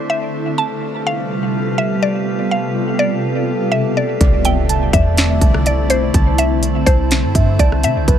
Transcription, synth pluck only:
0.10 E5
0.58 A5
1.07 F5
1.78 E5
2.03 D5
2.51 F5
2.99 D5
3.72 E5
3.97 D5
4.45 G5
4.93 E5
5.67 D5
5.90 C5
6.39 E5
6.86 C5
7.59 D5
7.84 E5

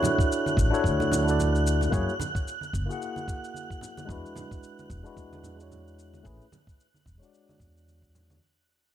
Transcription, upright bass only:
0.57 A1
0.84 D2
1.92 F#2
2.73 F#1
4.09 E2
4.90 E1
5.17 E2
6.25 A1
7.06 E1
7.60 E2

